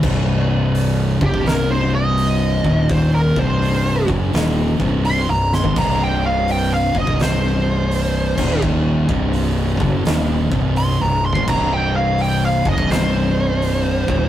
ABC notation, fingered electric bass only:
X:1
M:4/4
L:1/16
Q:"Swing" 1/4=84
K:Cphr
V:1 name="Fingered electric bass" clef=bass
C,,,6 ^F,,, C,,,6- C,,, E,,,2- | E,,,2 C,,,4 ^F,,,2 E,,,2 C,,,3 C,,,2 A,,, | C,,,6 ^F,,, C,,,6- C,,, E,,,2- | E,,,2 C,,,4 ^F,,,2 E,,,2 C,,,3 C,,,2 A,,, |
C,,,6 ^F,,, C,,,6- C,,, E,,,2 |]